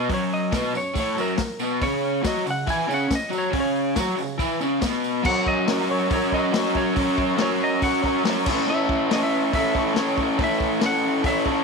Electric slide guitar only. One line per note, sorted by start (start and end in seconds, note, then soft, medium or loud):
0.00 0.12 D#5 medium
0.14 0.32 C#5 medium
0.34 0.73 D#5 medium
0.77 0.98 C#5 medium
1.00 1.20 C#5 medium
1.20 1.59 A#4 medium
1.83 2.26 C#5 loud
2.27 2.46 D#5 loud
2.50 2.69 F#5 loud
2.70 2.91 G#5 loud
2.94 3.14 F#5 medium
3.15 3.33 D#5 medium
3.38 3.57 C#5 medium
3.60 4.82 C#5 medium
5.26 5.48 F#5 loud
5.48 5.91 D#5 loud
5.91 6.12 C#5 loud
6.13 6.32 C#5 medium
6.34 6.77 D#5 loud
6.77 7.40 C#5 loud
7.42 7.61 C#5 medium
7.64 7.82 D#5 loud
7.83 8.23 F#5 medium
8.70 9.13 E5 loud
9.13 9.22 D#5 medium
9.23 9.52 E5 loud
9.55 9.94 E5 loud
9.99 10.42 C#5 medium
10.44 10.81 E5 loud
10.86 11.28 F#5 loud
11.26 11.64 E5 medium